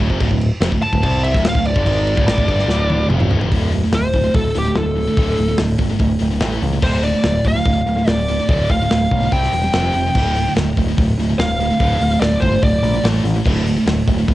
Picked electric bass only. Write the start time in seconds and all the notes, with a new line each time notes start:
0.10 F1
0.20 D1
0.31 D1
0.60 F1
0.72 D1
0.81 muted picked electric bass stroke
0.93 D1
1.04 C2
1.35 D1
1.42 D1
1.55 D1
1.76 G1
1.86 G#1
2.17 D1
2.26 A1
2.38 D1
2.48 G1
2.66 D1
3.08 F1
3.30 D1
3.40 F1
3.52 D1
3.92 D1
4.14 D1
4.34 D1
4.55 D1
4.76 D1
5.17 D1
5.38 D1
5.59 D1
5.78 G1
6.00 D1
6.21 D1
6.41 A1
6.62 C#2
6.82 D1
7.24 D1
7.45 D1
7.65 D1
7.86 D1
8.07 D1
8.49 D1
8.70 D1
8.91 D1
9.11 B1
9.32 C2
9.53 E1
9.74 F1
9.94 F1
10.15 D1
10.56 D1
10.77 D1
10.98 D1
11.17 D1
11.39 D1
11.80 D1
12.01 D1
12.21 D1
12.42 G1
12.63 D1
12.83 A#1
13.04 A1
13.24 A1
13.46 D1
13.86 D1
14.08 D1
14.29 D1